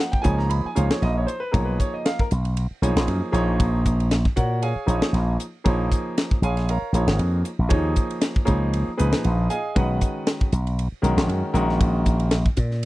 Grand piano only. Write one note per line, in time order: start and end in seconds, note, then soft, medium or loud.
0.00 0.19 F3 medium
0.00 0.19 A#3 medium
0.00 0.19 D#4 medium
0.00 0.19 G#4 medium
0.00 0.12 F#5 medium
0.12 0.24 G5 medium
0.22 0.66 F3 medium
0.22 0.66 A#3 medium
0.22 0.67 D#4 medium
0.22 0.67 G#4 medium
0.22 0.67 C#5 medium
0.22 0.37 G#5 medium
0.38 0.50 A#5 medium
0.50 0.64 B5 medium
0.66 0.77 G#5 medium
0.75 1.30 F3 medium
0.75 1.29 A#3 medium
0.75 1.29 D#4 medium
0.75 1.30 G#4 medium
0.75 0.90 C#5 medium
0.75 0.90 F5 medium
0.92 1.02 C#5 medium
1.02 1.16 D#5 medium
1.17 1.28 C#5 medium
1.27 1.41 C5 medium
1.40 1.52 B4 medium
1.52 2.25 F3 medium
1.52 2.25 A#3 medium
1.52 2.25 D#4 medium
1.52 2.25 G#4 medium
1.52 1.66 A#4 medium
1.52 1.78 C#5 medium
1.65 1.78 B4 medium
1.80 1.93 C#5 medium
1.94 2.05 D#5 medium
2.06 2.19 F5 medium
2.20 2.27 A#4 medium
2.82 3.31 F3 medium
2.82 3.31 A#3 medium
2.82 3.31 D#4 medium
2.82 3.31 G#4 medium
2.82 3.31 C#5 medium
3.32 4.16 F3 medium
3.32 4.16 A#3 medium
3.32 4.16 D#4 medium
3.32 4.16 G#4 medium
3.32 4.16 C#5 loud
4.36 4.61 F#4 medium
4.36 4.62 A#4 medium
4.36 4.61 C#5 medium
4.36 4.61 F#5 medium
4.62 4.85 G#4 medium
4.62 4.86 C#5 medium
4.62 5.36 F5 medium
4.62 5.36 G#5 medium
4.86 5.41 F3 medium
4.86 5.41 A#3 medium
4.86 5.41 D#4 medium
4.86 5.41 G#4 medium
4.86 5.41 C#5 medium
5.64 6.37 F3 medium
5.64 6.37 A#3 medium
5.64 6.36 D#4 medium
5.64 6.36 G#4 medium
5.64 6.37 C#5 medium
6.44 6.68 G#4 medium
6.44 6.68 C#5 medium
6.44 6.68 F5 medium
6.44 6.68 G#5 medium
6.70 7.42 A#4 medium
6.70 6.93 C#5 medium
6.70 7.42 F5 medium
6.70 7.42 A#5 medium
6.94 7.47 F3 medium
6.94 7.47 A#3 medium
6.94 7.48 D#4 medium
6.94 7.48 G#4 medium
6.94 7.48 C#5 medium
7.69 8.41 F3 medium
7.69 8.41 A#3 medium
7.69 8.41 D#4 medium
7.69 8.41 G#4 medium
7.69 8.42 C#5 medium
8.45 8.89 F3 medium
8.45 8.89 A#3 medium
8.45 8.89 D#4 medium
8.45 8.89 G#4 medium
8.45 8.89 C#5 medium
8.97 9.52 A#2 medium
8.97 9.52 F3 medium
8.97 9.52 D#4 medium
8.97 9.49 G#4 medium
8.97 9.52 B4 medium
9.50 9.76 G#4 medium
9.50 9.76 D#5 medium
9.50 9.75 F5 medium
9.50 9.75 G#5 medium
9.75 10.47 D#3 medium
9.75 10.47 G#3 medium
9.75 10.47 C#4 medium
9.75 10.47 F#4 medium
9.75 10.47 B4 medium
9.75 10.50 D#5 medium
9.75 10.50 F#5 medium
11.02 11.53 D#3 medium
11.02 11.52 G#3 medium
11.02 11.53 C#4 medium
11.02 11.53 F#4 medium
11.02 11.52 A#4 medium
11.54 12.37 D#3 medium
11.54 12.37 G#3 medium
11.54 12.37 C#4 medium
11.54 12.38 F#4 medium
11.54 12.37 A#4 loud